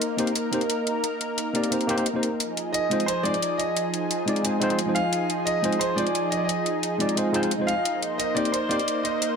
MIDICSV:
0, 0, Header, 1, 5, 480
1, 0, Start_track
1, 0, Tempo, 340909
1, 1460, Time_signature, 4, 2, 24, 8
1, 13182, End_track
2, 0, Start_track
2, 0, Title_t, "Grand piano"
2, 0, Program_c, 0, 0
2, 3838, Note_on_c, 0, 75, 92
2, 4313, Note_on_c, 0, 72, 85
2, 4344, Note_off_c, 0, 75, 0
2, 4553, Note_on_c, 0, 74, 108
2, 4574, Note_off_c, 0, 72, 0
2, 5033, Note_on_c, 0, 75, 87
2, 5062, Note_off_c, 0, 74, 0
2, 5950, Note_off_c, 0, 75, 0
2, 6967, Note_on_c, 0, 77, 99
2, 7420, Note_off_c, 0, 77, 0
2, 7680, Note_on_c, 0, 75, 88
2, 8158, Note_on_c, 0, 72, 82
2, 8185, Note_off_c, 0, 75, 0
2, 8397, Note_on_c, 0, 74, 90
2, 8417, Note_off_c, 0, 72, 0
2, 8875, Note_on_c, 0, 75, 78
2, 8903, Note_off_c, 0, 74, 0
2, 8974, Note_on_c, 0, 74, 66
2, 8980, Note_off_c, 0, 75, 0
2, 9073, Note_on_c, 0, 75, 76
2, 9085, Note_off_c, 0, 74, 0
2, 9793, Note_off_c, 0, 75, 0
2, 10798, Note_on_c, 0, 77, 93
2, 11255, Note_off_c, 0, 77, 0
2, 11519, Note_on_c, 0, 75, 83
2, 11753, Note_on_c, 0, 74, 86
2, 11777, Note_off_c, 0, 75, 0
2, 11999, Note_on_c, 0, 72, 78
2, 12014, Note_off_c, 0, 74, 0
2, 12236, Note_on_c, 0, 74, 92
2, 12257, Note_off_c, 0, 72, 0
2, 12717, Note_on_c, 0, 75, 82
2, 12743, Note_off_c, 0, 74, 0
2, 13182, Note_off_c, 0, 75, 0
2, 13182, End_track
3, 0, Start_track
3, 0, Title_t, "Analog synth pad"
3, 0, Program_c, 1, 89
3, 0, Note_on_c, 1, 58, 78
3, 0, Note_on_c, 1, 63, 72
3, 0, Note_on_c, 1, 70, 85
3, 3323, Note_off_c, 1, 58, 0
3, 3323, Note_off_c, 1, 63, 0
3, 3341, Note_off_c, 1, 70, 0
3, 3384, Note_on_c, 1, 63, 71
3, 3384, Note_on_c, 1, 68, 87
3, 3386, Note_on_c, 1, 53, 82
3, 11006, Note_off_c, 1, 68, 0
3, 11007, Note_off_c, 1, 53, 0
3, 11059, Note_on_c, 1, 72, 86
3, 11060, Note_on_c, 1, 58, 76
3, 13182, Note_off_c, 1, 58, 0
3, 13182, Note_off_c, 1, 63, 0
3, 13182, Note_off_c, 1, 72, 0
3, 13182, End_track
4, 0, Start_track
4, 0, Title_t, "Tine electric piano"
4, 0, Program_c, 2, 4
4, 239, Note_on_c, 2, 58, 80
4, 249, Note_on_c, 2, 60, 73
4, 259, Note_on_c, 2, 63, 73
4, 271, Note_on_c, 2, 67, 76
4, 281, Note_on_c, 2, 72, 92
4, 434, Note_off_c, 2, 58, 0
4, 440, Note_off_c, 2, 60, 0
4, 445, Note_off_c, 2, 63, 0
4, 451, Note_off_c, 2, 67, 0
4, 455, Note_off_c, 2, 72, 0
4, 722, Note_on_c, 2, 58, 75
4, 731, Note_on_c, 2, 60, 69
4, 742, Note_on_c, 2, 63, 68
4, 753, Note_on_c, 2, 67, 70
4, 764, Note_on_c, 2, 72, 87
4, 848, Note_off_c, 2, 58, 0
4, 852, Note_off_c, 2, 60, 0
4, 858, Note_off_c, 2, 63, 0
4, 863, Note_off_c, 2, 67, 0
4, 869, Note_off_c, 2, 72, 0
4, 2160, Note_on_c, 2, 58, 76
4, 2170, Note_on_c, 2, 60, 69
4, 2182, Note_on_c, 2, 63, 71
4, 2192, Note_on_c, 2, 67, 68
4, 2203, Note_on_c, 2, 74, 81
4, 2382, Note_off_c, 2, 58, 0
4, 2387, Note_off_c, 2, 60, 0
4, 2393, Note_off_c, 2, 63, 0
4, 2398, Note_off_c, 2, 67, 0
4, 2400, Note_on_c, 2, 58, 67
4, 2403, Note_off_c, 2, 74, 0
4, 2411, Note_on_c, 2, 60, 64
4, 2421, Note_on_c, 2, 63, 63
4, 2432, Note_on_c, 2, 67, 62
4, 2442, Note_on_c, 2, 72, 74
4, 2626, Note_off_c, 2, 58, 0
4, 2632, Note_off_c, 2, 60, 0
4, 2637, Note_off_c, 2, 63, 0
4, 2641, Note_on_c, 2, 58, 93
4, 2642, Note_off_c, 2, 67, 0
4, 2648, Note_off_c, 2, 72, 0
4, 2651, Note_on_c, 2, 60, 85
4, 2662, Note_on_c, 2, 63, 82
4, 2674, Note_on_c, 2, 67, 86
4, 2684, Note_on_c, 2, 72, 100
4, 2743, Note_off_c, 2, 58, 0
4, 2748, Note_off_c, 2, 60, 0
4, 2753, Note_off_c, 2, 63, 0
4, 2759, Note_off_c, 2, 67, 0
4, 2761, Note_on_c, 2, 58, 68
4, 2764, Note_off_c, 2, 72, 0
4, 2774, Note_on_c, 2, 60, 65
4, 2785, Note_on_c, 2, 63, 64
4, 2794, Note_on_c, 2, 67, 67
4, 2806, Note_on_c, 2, 72, 79
4, 2885, Note_off_c, 2, 58, 0
4, 2891, Note_off_c, 2, 60, 0
4, 2897, Note_off_c, 2, 63, 0
4, 2901, Note_off_c, 2, 67, 0
4, 2908, Note_off_c, 2, 72, 0
4, 3003, Note_on_c, 2, 58, 70
4, 3014, Note_on_c, 2, 60, 67
4, 3025, Note_on_c, 2, 63, 65
4, 3036, Note_on_c, 2, 67, 66
4, 3046, Note_on_c, 2, 72, 80
4, 3196, Note_off_c, 2, 58, 0
4, 3201, Note_off_c, 2, 60, 0
4, 3207, Note_off_c, 2, 63, 0
4, 3212, Note_off_c, 2, 67, 0
4, 3217, Note_off_c, 2, 72, 0
4, 4082, Note_on_c, 2, 56, 84
4, 4094, Note_on_c, 2, 60, 76
4, 4104, Note_on_c, 2, 63, 73
4, 4116, Note_on_c, 2, 65, 74
4, 4125, Note_on_c, 2, 72, 89
4, 4276, Note_off_c, 2, 56, 0
4, 4282, Note_off_c, 2, 60, 0
4, 4287, Note_off_c, 2, 63, 0
4, 4293, Note_off_c, 2, 65, 0
4, 4297, Note_off_c, 2, 72, 0
4, 4559, Note_on_c, 2, 56, 74
4, 4571, Note_on_c, 2, 60, 69
4, 4580, Note_on_c, 2, 63, 70
4, 4591, Note_on_c, 2, 65, 70
4, 4603, Note_on_c, 2, 72, 86
4, 4686, Note_off_c, 2, 56, 0
4, 4692, Note_off_c, 2, 60, 0
4, 4697, Note_off_c, 2, 63, 0
4, 4702, Note_off_c, 2, 65, 0
4, 4708, Note_off_c, 2, 72, 0
4, 6000, Note_on_c, 2, 56, 76
4, 6010, Note_on_c, 2, 60, 70
4, 6021, Note_on_c, 2, 63, 72
4, 6033, Note_on_c, 2, 65, 72
4, 6043, Note_on_c, 2, 74, 89
4, 6222, Note_off_c, 2, 56, 0
4, 6227, Note_off_c, 2, 60, 0
4, 6233, Note_off_c, 2, 63, 0
4, 6238, Note_off_c, 2, 65, 0
4, 6242, Note_on_c, 2, 56, 69
4, 6243, Note_off_c, 2, 74, 0
4, 6252, Note_on_c, 2, 60, 62
4, 6262, Note_on_c, 2, 63, 63
4, 6274, Note_on_c, 2, 65, 65
4, 6285, Note_on_c, 2, 72, 78
4, 6467, Note_off_c, 2, 56, 0
4, 6472, Note_off_c, 2, 60, 0
4, 6478, Note_off_c, 2, 63, 0
4, 6482, Note_on_c, 2, 56, 94
4, 6484, Note_off_c, 2, 65, 0
4, 6489, Note_off_c, 2, 72, 0
4, 6494, Note_on_c, 2, 60, 88
4, 6504, Note_on_c, 2, 63, 85
4, 6514, Note_on_c, 2, 65, 87
4, 6525, Note_on_c, 2, 72, 104
4, 6583, Note_off_c, 2, 56, 0
4, 6589, Note_off_c, 2, 60, 0
4, 6594, Note_off_c, 2, 63, 0
4, 6600, Note_off_c, 2, 65, 0
4, 6600, Note_on_c, 2, 56, 72
4, 6605, Note_off_c, 2, 72, 0
4, 6612, Note_on_c, 2, 60, 69
4, 6622, Note_on_c, 2, 63, 69
4, 6633, Note_on_c, 2, 65, 69
4, 6644, Note_on_c, 2, 72, 78
4, 6725, Note_off_c, 2, 56, 0
4, 6731, Note_off_c, 2, 60, 0
4, 6736, Note_off_c, 2, 63, 0
4, 6741, Note_off_c, 2, 65, 0
4, 6747, Note_off_c, 2, 72, 0
4, 6841, Note_on_c, 2, 56, 74
4, 6852, Note_on_c, 2, 60, 69
4, 6864, Note_on_c, 2, 63, 69
4, 6874, Note_on_c, 2, 65, 67
4, 6884, Note_on_c, 2, 72, 81
4, 7035, Note_off_c, 2, 56, 0
4, 7040, Note_off_c, 2, 60, 0
4, 7046, Note_off_c, 2, 63, 0
4, 7051, Note_off_c, 2, 65, 0
4, 7056, Note_off_c, 2, 72, 0
4, 7917, Note_on_c, 2, 56, 85
4, 7927, Note_on_c, 2, 60, 73
4, 7938, Note_on_c, 2, 63, 74
4, 7948, Note_on_c, 2, 65, 74
4, 7960, Note_on_c, 2, 72, 92
4, 8114, Note_off_c, 2, 56, 0
4, 8119, Note_off_c, 2, 60, 0
4, 8124, Note_off_c, 2, 63, 0
4, 8129, Note_off_c, 2, 65, 0
4, 8135, Note_off_c, 2, 72, 0
4, 8396, Note_on_c, 2, 56, 76
4, 8407, Note_on_c, 2, 60, 70
4, 8417, Note_on_c, 2, 63, 71
4, 8428, Note_on_c, 2, 65, 72
4, 8439, Note_on_c, 2, 72, 89
4, 8525, Note_off_c, 2, 56, 0
4, 8530, Note_off_c, 2, 60, 0
4, 8535, Note_off_c, 2, 63, 0
4, 8541, Note_off_c, 2, 65, 0
4, 8546, Note_off_c, 2, 72, 0
4, 9834, Note_on_c, 2, 56, 75
4, 9845, Note_on_c, 2, 60, 69
4, 9856, Note_on_c, 2, 63, 69
4, 9866, Note_on_c, 2, 65, 72
4, 9877, Note_on_c, 2, 74, 89
4, 10059, Note_off_c, 2, 56, 0
4, 10064, Note_off_c, 2, 60, 0
4, 10070, Note_off_c, 2, 63, 0
4, 10075, Note_off_c, 2, 65, 0
4, 10076, Note_on_c, 2, 56, 70
4, 10080, Note_off_c, 2, 74, 0
4, 10087, Note_on_c, 2, 60, 63
4, 10097, Note_on_c, 2, 63, 64
4, 10108, Note_on_c, 2, 65, 64
4, 10119, Note_on_c, 2, 72, 78
4, 10297, Note_off_c, 2, 56, 0
4, 10310, Note_off_c, 2, 60, 0
4, 10314, Note_on_c, 2, 56, 93
4, 10315, Note_off_c, 2, 63, 0
4, 10320, Note_off_c, 2, 65, 0
4, 10325, Note_on_c, 2, 60, 82
4, 10326, Note_off_c, 2, 72, 0
4, 10336, Note_on_c, 2, 63, 82
4, 10347, Note_on_c, 2, 65, 85
4, 10357, Note_on_c, 2, 72, 105
4, 10419, Note_off_c, 2, 56, 0
4, 10425, Note_off_c, 2, 60, 0
4, 10430, Note_off_c, 2, 63, 0
4, 10436, Note_off_c, 2, 65, 0
4, 10439, Note_on_c, 2, 56, 70
4, 10441, Note_off_c, 2, 72, 0
4, 10450, Note_on_c, 2, 60, 68
4, 10460, Note_on_c, 2, 63, 65
4, 10471, Note_on_c, 2, 65, 66
4, 10482, Note_on_c, 2, 72, 81
4, 10564, Note_off_c, 2, 56, 0
4, 10570, Note_off_c, 2, 60, 0
4, 10575, Note_off_c, 2, 63, 0
4, 10580, Note_off_c, 2, 65, 0
4, 10586, Note_off_c, 2, 72, 0
4, 10680, Note_on_c, 2, 56, 72
4, 10690, Note_on_c, 2, 60, 64
4, 10702, Note_on_c, 2, 63, 69
4, 10712, Note_on_c, 2, 65, 67
4, 10723, Note_on_c, 2, 72, 82
4, 10874, Note_off_c, 2, 56, 0
4, 10879, Note_off_c, 2, 60, 0
4, 10885, Note_off_c, 2, 63, 0
4, 10890, Note_off_c, 2, 65, 0
4, 10896, Note_off_c, 2, 72, 0
4, 11759, Note_on_c, 2, 58, 82
4, 11769, Note_on_c, 2, 60, 72
4, 11780, Note_on_c, 2, 63, 73
4, 11791, Note_on_c, 2, 67, 76
4, 11802, Note_on_c, 2, 72, 90
4, 11954, Note_off_c, 2, 58, 0
4, 11960, Note_off_c, 2, 60, 0
4, 11965, Note_off_c, 2, 63, 0
4, 11970, Note_off_c, 2, 67, 0
4, 11976, Note_off_c, 2, 72, 0
4, 12240, Note_on_c, 2, 58, 75
4, 12250, Note_on_c, 2, 60, 71
4, 12262, Note_on_c, 2, 63, 71
4, 12272, Note_on_c, 2, 67, 74
4, 12283, Note_on_c, 2, 72, 86
4, 12367, Note_off_c, 2, 58, 0
4, 12372, Note_off_c, 2, 60, 0
4, 12378, Note_off_c, 2, 63, 0
4, 12383, Note_off_c, 2, 67, 0
4, 12388, Note_off_c, 2, 72, 0
4, 13182, End_track
5, 0, Start_track
5, 0, Title_t, "Drums"
5, 21, Note_on_c, 9, 42, 87
5, 162, Note_off_c, 9, 42, 0
5, 260, Note_on_c, 9, 42, 62
5, 384, Note_off_c, 9, 42, 0
5, 384, Note_on_c, 9, 42, 34
5, 500, Note_off_c, 9, 42, 0
5, 500, Note_on_c, 9, 42, 91
5, 641, Note_off_c, 9, 42, 0
5, 741, Note_on_c, 9, 42, 62
5, 862, Note_off_c, 9, 42, 0
5, 862, Note_on_c, 9, 42, 34
5, 980, Note_off_c, 9, 42, 0
5, 980, Note_on_c, 9, 42, 78
5, 1121, Note_off_c, 9, 42, 0
5, 1223, Note_on_c, 9, 42, 61
5, 1364, Note_off_c, 9, 42, 0
5, 1461, Note_on_c, 9, 42, 89
5, 1601, Note_off_c, 9, 42, 0
5, 1701, Note_on_c, 9, 42, 58
5, 1842, Note_off_c, 9, 42, 0
5, 1941, Note_on_c, 9, 42, 83
5, 2082, Note_off_c, 9, 42, 0
5, 2180, Note_on_c, 9, 42, 60
5, 2303, Note_off_c, 9, 42, 0
5, 2303, Note_on_c, 9, 42, 35
5, 2421, Note_off_c, 9, 42, 0
5, 2421, Note_on_c, 9, 42, 87
5, 2544, Note_off_c, 9, 42, 0
5, 2544, Note_on_c, 9, 42, 35
5, 2662, Note_off_c, 9, 42, 0
5, 2662, Note_on_c, 9, 42, 59
5, 2783, Note_off_c, 9, 42, 0
5, 2783, Note_on_c, 9, 42, 33
5, 2900, Note_off_c, 9, 42, 0
5, 2900, Note_on_c, 9, 42, 83
5, 3041, Note_off_c, 9, 42, 0
5, 3140, Note_on_c, 9, 42, 60
5, 3281, Note_off_c, 9, 42, 0
5, 3381, Note_on_c, 9, 42, 86
5, 3522, Note_off_c, 9, 42, 0
5, 3622, Note_on_c, 9, 42, 56
5, 3763, Note_off_c, 9, 42, 0
5, 3862, Note_on_c, 9, 42, 88
5, 4003, Note_off_c, 9, 42, 0
5, 4102, Note_on_c, 9, 42, 60
5, 4223, Note_off_c, 9, 42, 0
5, 4223, Note_on_c, 9, 42, 34
5, 4341, Note_off_c, 9, 42, 0
5, 4341, Note_on_c, 9, 42, 90
5, 4482, Note_off_c, 9, 42, 0
5, 4582, Note_on_c, 9, 42, 64
5, 4704, Note_off_c, 9, 42, 0
5, 4704, Note_on_c, 9, 42, 34
5, 4823, Note_off_c, 9, 42, 0
5, 4823, Note_on_c, 9, 42, 83
5, 4963, Note_off_c, 9, 42, 0
5, 5062, Note_on_c, 9, 42, 64
5, 5203, Note_off_c, 9, 42, 0
5, 5301, Note_on_c, 9, 42, 84
5, 5442, Note_off_c, 9, 42, 0
5, 5543, Note_on_c, 9, 42, 59
5, 5683, Note_off_c, 9, 42, 0
5, 5783, Note_on_c, 9, 42, 86
5, 5924, Note_off_c, 9, 42, 0
5, 6022, Note_on_c, 9, 42, 59
5, 6142, Note_off_c, 9, 42, 0
5, 6142, Note_on_c, 9, 42, 34
5, 6260, Note_off_c, 9, 42, 0
5, 6260, Note_on_c, 9, 42, 89
5, 6400, Note_off_c, 9, 42, 0
5, 6499, Note_on_c, 9, 42, 59
5, 6621, Note_off_c, 9, 42, 0
5, 6621, Note_on_c, 9, 42, 34
5, 6739, Note_off_c, 9, 42, 0
5, 6739, Note_on_c, 9, 42, 80
5, 6880, Note_off_c, 9, 42, 0
5, 6979, Note_on_c, 9, 42, 61
5, 7120, Note_off_c, 9, 42, 0
5, 7218, Note_on_c, 9, 42, 80
5, 7359, Note_off_c, 9, 42, 0
5, 7458, Note_on_c, 9, 42, 55
5, 7599, Note_off_c, 9, 42, 0
5, 7699, Note_on_c, 9, 42, 82
5, 7840, Note_off_c, 9, 42, 0
5, 7939, Note_on_c, 9, 42, 57
5, 8061, Note_off_c, 9, 42, 0
5, 8061, Note_on_c, 9, 42, 32
5, 8179, Note_off_c, 9, 42, 0
5, 8179, Note_on_c, 9, 42, 85
5, 8319, Note_off_c, 9, 42, 0
5, 8419, Note_on_c, 9, 42, 56
5, 8541, Note_off_c, 9, 42, 0
5, 8541, Note_on_c, 9, 42, 31
5, 8659, Note_off_c, 9, 42, 0
5, 8659, Note_on_c, 9, 42, 75
5, 8800, Note_off_c, 9, 42, 0
5, 8899, Note_on_c, 9, 42, 56
5, 9040, Note_off_c, 9, 42, 0
5, 9139, Note_on_c, 9, 42, 77
5, 9280, Note_off_c, 9, 42, 0
5, 9378, Note_on_c, 9, 42, 53
5, 9519, Note_off_c, 9, 42, 0
5, 9619, Note_on_c, 9, 42, 77
5, 9760, Note_off_c, 9, 42, 0
5, 9860, Note_on_c, 9, 42, 54
5, 9982, Note_off_c, 9, 42, 0
5, 9982, Note_on_c, 9, 42, 31
5, 10099, Note_off_c, 9, 42, 0
5, 10099, Note_on_c, 9, 42, 80
5, 10240, Note_off_c, 9, 42, 0
5, 10340, Note_on_c, 9, 42, 56
5, 10461, Note_off_c, 9, 42, 0
5, 10461, Note_on_c, 9, 42, 31
5, 10579, Note_off_c, 9, 42, 0
5, 10579, Note_on_c, 9, 42, 76
5, 10720, Note_off_c, 9, 42, 0
5, 10820, Note_on_c, 9, 42, 56
5, 10961, Note_off_c, 9, 42, 0
5, 11059, Note_on_c, 9, 42, 79
5, 11200, Note_off_c, 9, 42, 0
5, 11299, Note_on_c, 9, 42, 58
5, 11440, Note_off_c, 9, 42, 0
5, 11540, Note_on_c, 9, 42, 82
5, 11680, Note_off_c, 9, 42, 0
5, 11780, Note_on_c, 9, 42, 58
5, 11902, Note_off_c, 9, 42, 0
5, 11902, Note_on_c, 9, 42, 32
5, 12020, Note_off_c, 9, 42, 0
5, 12020, Note_on_c, 9, 42, 85
5, 12161, Note_off_c, 9, 42, 0
5, 12261, Note_on_c, 9, 42, 55
5, 12383, Note_off_c, 9, 42, 0
5, 12383, Note_on_c, 9, 42, 31
5, 12501, Note_off_c, 9, 42, 0
5, 12501, Note_on_c, 9, 42, 75
5, 12642, Note_off_c, 9, 42, 0
5, 12741, Note_on_c, 9, 42, 58
5, 12882, Note_off_c, 9, 42, 0
5, 12980, Note_on_c, 9, 42, 85
5, 13121, Note_off_c, 9, 42, 0
5, 13182, End_track
0, 0, End_of_file